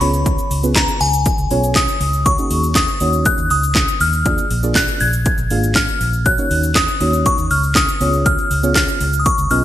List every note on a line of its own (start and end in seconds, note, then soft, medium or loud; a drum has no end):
0.01 0.36 C#2 loud
0.01 0.51 B3 medium
0.01 0.51 C#4 medium
0.01 0.51 F4 medium
0.01 0.51 G#4 medium
0.01 0.51 C#5 medium
0.01 0.47 B5 medium
0.01 open hi-hat medium
0.01 shaker medium
0.14 shaker medium
0.26 kick loud
0.26 closed hi-hat medium
0.26 shaker medium
0.38 shaker medium
0.51 0.86 C#2 medium
0.51 open hi-hat medium
0.51 shaker medium
0.63 1.06 B3 medium
0.63 1.06 C#4 medium
0.63 1.06 F4 medium
0.63 1.06 G#4 medium
0.63 1.06 B4 medium
0.63 shaker medium
0.75 0.87 A#5 medium
0.75 kick loud
0.75 snare medium
0.75 clap loud
0.75 closed hi-hat medium
0.75 shaker medium
0.88 shaker medium
1.01 1.27 C#2 loud
1.01 1.78 G#5 medium
1.01 open hi-hat medium
1.01 shaker medium
1.13 shaker medium
1.26 kick loud
1.26 closed hi-hat medium
1.26 shaker medium
1.38 1.47 C#2 loud
1.38 shaker medium
1.51 1.86 B1 loud
1.51 1.87 B3 medium
1.51 1.87 C#4 medium
1.51 1.88 F4 medium
1.51 1.88 G#4 medium
1.51 1.88 C#5 medium
1.51 open hi-hat medium
1.51 shaker medium
1.64 shaker medium
1.75 2.27 D#6 loud
1.75 kick loud
1.75 snare medium
1.75 clap loud
1.75 closed hi-hat medium
1.75 shaker medium
1.88 shaker medium
2.01 2.36 C#2 loud
2.01 open hi-hat medium
2.01 shaker medium
2.13 shaker medium
2.26 2.32 F#4 medium
2.26 2.32 C#5 medium
2.26 2.77 C#6 loud
2.26 kick loud
2.26 closed hi-hat medium
2.26 shaker medium
2.38 2.69 A#3 medium
2.38 2.69 C#4 medium
2.38 2.69 D#4 medium
2.38 2.69 F#4 medium
2.38 2.69 G#4 medium
2.38 shaker medium
2.51 2.86 D#2 medium
2.51 open hi-hat medium
2.51 shaker medium
2.63 shaker medium
2.75 3.27 D#6 loud
2.75 kick loud
2.75 snare medium
2.75 clap loud
2.75 closed hi-hat medium
2.75 shaker medium
2.88 shaker medium
3.00 3.27 D#2 loud
3.00 3.50 A#3 medium
3.00 3.50 C#4 medium
3.00 3.50 D#4 medium
3.00 3.50 F#4 medium
3.00 3.50 C#5 medium
3.00 open hi-hat medium
3.00 shaker medium
3.13 shaker medium
3.25 3.52 F#6 loud
3.25 kick loud
3.25 closed hi-hat medium
3.25 shaker medium
3.38 3.47 D#2 loud
3.38 shaker medium
3.50 3.86 C#2 loud
3.50 4.02 D#6 loud
3.50 open hi-hat medium
3.50 shaker medium
3.63 shaker medium
3.75 kick loud
3.75 snare medium
3.75 clap loud
3.75 closed hi-hat medium
3.75 shaker medium
3.88 shaker medium
4.00 4.36 D#2 loud
4.00 4.47 F6 loud
4.00 open hi-hat medium
4.00 shaker medium
4.13 shaker medium
4.25 4.44 A#3 medium
4.25 4.44 D4 medium
4.25 4.44 F4 medium
4.25 4.44 G#4 medium
4.25 4.44 D5 medium
4.25 kick loud
4.25 closed hi-hat medium
4.25 shaker medium
4.38 shaker medium
4.51 4.86 A#1 medium
4.51 open hi-hat medium
4.51 shaker medium
4.63 5.06 A#3 medium
4.63 5.06 D4 medium
4.63 5.06 F4 medium
4.63 5.06 G#4 medium
4.63 5.06 D5 medium
4.63 shaker medium
4.75 5.02 F#6 loud
4.75 kick loud
4.75 snare medium
4.75 clap loud
4.75 closed hi-hat medium
4.75 shaker medium
4.88 shaker medium
5.00 5.27 A#1 loud
5.00 5.78 G#6 loud
5.00 open hi-hat medium
5.00 shaker medium
5.13 shaker medium
5.26 kick loud
5.26 closed hi-hat medium
5.26 shaker medium
5.38 5.47 A#1 loud
5.38 shaker medium
5.50 5.86 G#1 loud
5.50 5.87 A#3 medium
5.50 5.87 D4 medium
5.50 5.87 F4 medium
5.50 5.88 G#4 medium
5.50 5.88 F5 medium
5.50 open hi-hat medium
5.50 shaker medium
5.63 shaker medium
5.75 6.27 F6 loud
5.75 kick loud
5.75 snare medium
5.75 clap loud
5.75 closed hi-hat medium
5.75 shaker medium
5.88 shaker medium
6.01 6.36 A#1 loud
6.01 open hi-hat medium
6.01 shaker medium
6.13 shaker medium
6.26 6.32 F#4 medium
6.26 6.32 C#5 medium
6.26 6.77 F#6 loud
6.26 kick loud
6.26 closed hi-hat medium
6.26 shaker medium
6.38 6.69 A#3 medium
6.38 6.69 C#4 medium
6.38 6.69 D#4 medium
6.38 6.69 F#4 medium
6.38 6.69 C#5 medium
6.38 shaker medium
6.51 6.86 D#2 medium
6.51 open hi-hat medium
6.51 shaker medium
6.63 shaker medium
6.75 7.27 D#6 loud
6.75 kick loud
6.75 snare medium
6.75 clap loud
6.75 closed hi-hat medium
6.75 shaker medium
6.88 shaker medium
7.01 7.27 D#2 loud
7.01 7.50 A#3 medium
7.01 7.50 C#4 medium
7.01 7.50 D#4 medium
7.01 7.50 F#4 medium
7.01 7.50 C#5 medium
7.01 open hi-hat medium
7.01 shaker medium
7.13 shaker medium
7.26 7.52 C#6 loud
7.26 kick loud
7.26 closed hi-hat medium
7.26 shaker medium
7.38 7.47 D#2 loud
7.38 shaker medium
7.51 7.86 C#2 loud
7.51 7.77 F6 loud
7.51 open hi-hat medium
7.51 shaker medium
7.64 shaker medium
7.75 8.27 D#6 loud
7.75 kick loud
7.75 snare medium
7.75 clap loud
7.75 closed hi-hat medium
7.75 shaker medium
7.88 shaker medium
8.00 8.36 C#2 loud
8.00 8.51 B3 medium
8.00 8.51 C#4 medium
8.00 8.51 F4 medium
8.00 8.51 G#4 medium
8.00 8.51 C#5 medium
8.00 open hi-hat medium
8.00 shaker medium
8.13 shaker medium
8.26 8.74 F6 loud
8.26 kick loud
8.26 closed hi-hat medium
8.26 shaker medium
8.38 shaker medium
8.51 8.86 C#2 medium
8.51 open hi-hat medium
8.51 shaker medium
8.63 9.06 B3 medium
8.63 9.06 C#4 medium
8.63 9.06 F4 medium
8.63 9.06 G#4 medium
8.63 9.06 C#5 medium
8.63 shaker medium
8.75 9.21 F6 loud
8.75 kick loud
8.75 snare medium
8.75 clap loud
8.75 closed hi-hat medium
8.75 shaker medium
8.88 shaker medium
9.01 9.27 C#2 loud
9.01 open hi-hat medium
9.01 shaker medium
9.13 shaker medium
9.20 9.26 D#6 medium
9.26 9.52 C#6 loud
9.26 kick loud
9.26 closed hi-hat medium
9.26 shaker medium
9.38 9.47 C#2 loud
9.38 shaker medium
9.50 9.64 B1 loud
9.50 9.64 B3 medium
9.50 9.64 C#4 medium
9.50 9.64 F4 medium
9.50 9.64 G#4 medium
9.50 9.64 D#5 medium
9.50 9.64 F6 loud
9.50 open hi-hat medium
9.50 shaker medium